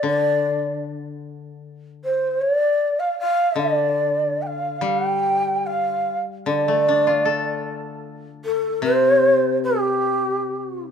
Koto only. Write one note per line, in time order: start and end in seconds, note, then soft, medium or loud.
0.03 2.39 D3 soft
3.56 6.06 D3 medium
4.81 7.24 G3 soft
6.46 8.82 D3 soft
6.68 8.23 A3 soft
6.89 8.43 D4 soft
7.07 8.63 F4 soft
7.25 8.82 A4 soft
8.82 10.91 C3 medium